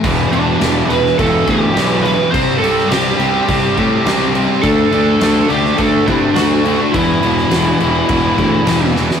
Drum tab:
CC |x-x-x-x-x-x-x-x-|x-x-x-x-x-x-x-x-|x-x-x-x-x-x-x-x-|x-x-x-x-x-x-x---|
SD |----o--o----o---|---oo-------o---|----o--o----o---|---oo-------o-oo|
BD |o-------o-o-----|o-------o-o-----|o-------o-o-----|o-------o-o-----|